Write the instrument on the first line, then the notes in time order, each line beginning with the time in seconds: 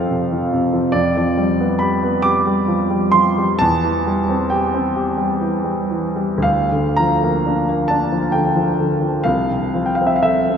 grand piano
Already playing: F2 C3 F3 C4 A4 F5 G5
0.10 C3
0.32 F3
0.53 C3
0.73 F3
0.92 F2 D5
1.17 F3
1.37 G3
1.60 B3
1.79 G4 B5
2.03 B3
2.22 G4 D6
2.47 G3
2.68 F3
2.90 G3
3.12 F3 C6
3.38 G3
3.59 E2 A5
3.84 E3
4.07 G3
4.29 C4
4.50 G4 G5
4.74 C4
4.96 G4
5.17 G3
5.41 E3
5.64 G3
5.91 E3
6.16 G3
6.38 D2
6.42 F5
6.72 D3
6.96 F3 A#5
7.24 A#3
7.46 D4
7.69 A#3
7.88 D4 A5
8.12 F3
8.32 D3 G5
8.56 F3
8.80 D3
9.02 F3
9.24 C2 F5
9.51 C3
9.75 F3
9.86 G5
9.95 F5
10.01 C4
10.07 E5
10.16 F5
10.23 A4 E5
10.49 C4